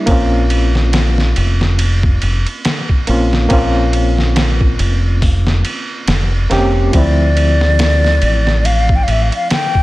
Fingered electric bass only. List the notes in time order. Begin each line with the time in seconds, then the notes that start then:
0.08 A#1
1.37 F1
2.22 F1
3.09 A#1
3.51 A#1
4.79 F1
6.08 F1
6.50 F1
6.93 D2
8.22 A1
9.07 A1